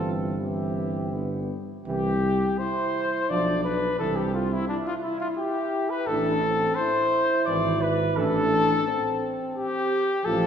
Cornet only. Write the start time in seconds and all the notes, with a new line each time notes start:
Already playing: A4
0.40 G4
1.86 G4
2.58 C5
3.30 D5
3.64 B4
3.99 A4
4.16 G4
4.34 F4
4.53 E4
4.68 D4
4.87 F4
5.03 E4
5.20 F4
5.37 G4
5.90 B4
6.07 A4
6.75 C5
7.45 D5
7.81 B4
8.17 A4
9.55 G4
10.25 A4